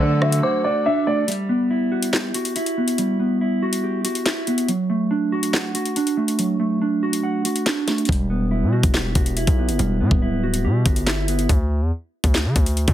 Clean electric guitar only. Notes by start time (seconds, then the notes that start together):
Already playing: F#3 A3
0.01 D4
0.22 F#4
0.43 F#5
0.65 F#4
0.86 D4
1.07 A3
1.27 G3
1.49 B3
1.70 E4
1.92 F#4
2.13 G4
2.35 F#4
2.56 E4
2.78 B3
2.98 G3
3.20 B3
3.41 E4
3.62 F#4
3.84 G4
4.04 F#4
4.26 E4
4.47 B3
4.68 F#3
4.90 A3
5.11 D4
5.32 F#4
5.54 F#5
5.75 F#4
5.96 D4
6.17 A3
6.39 F#3
6.60 A3
6.81 D4
7.03 F#4
7.23 F#5
7.45 F#4
7.66 D4
7.88 A3
8.08 G3
8.30 B3
8.51 E4
8.73 F#4
8.94 G4
9.15 F#4
9.37 E4
9.58 B3
9.79 G3
10.00 B3
10.22 E4
10.43 F#4
10.65 G4
10.86 F#4
11.07 E4
11.28 B3